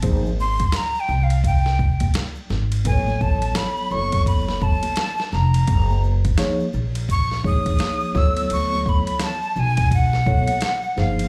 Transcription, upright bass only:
0.03 0.65 G#1 loud
1.09 2.11 C2 medium
2.50 2.81 G#1 medium
2.85 3.16 A1 loud
3.21 3.52 A1 medium
3.92 4.80 F#1 medium
5.33 5.64 F1 medium
5.68 6.30 F#1 medium
6.74 7.76 A#1 medium
8.15 8.46 D2 medium
8.51 9.01 D2 loud
9.56 10.45 B1 medium
10.98 11.28 G1 medium

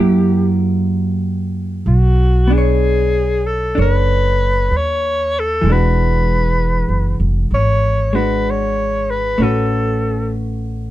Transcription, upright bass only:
0.00 1.82 F#2 medium
1.86 3.73 B1 medium
3.78 4.68 F#1 medium
4.71 5.61 D#2 medium
5.63 6.84 E1 medium
6.89 7.18 F#1 medium
7.20 7.49 F1 medium
7.51 9.33 G#1 medium
9.38 10.91 A1 medium

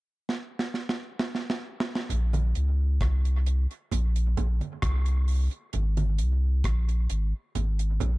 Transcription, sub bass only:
2.12 2.54 A#1 loud
2.57 2.99 C#2 medium
3.01 3.67 C2 medium
3.93 4.36 A#1 loud
4.39 4.61 A#1 medium
4.84 5.49 C2 loud
5.75 6.22 G#1 loud
6.21 6.63 C2 medium
6.65 7.08 A#1 medium
7.11 7.33 G#1 medium
7.56 7.99 G#1 medium
8.02 8.18 A#1 loud

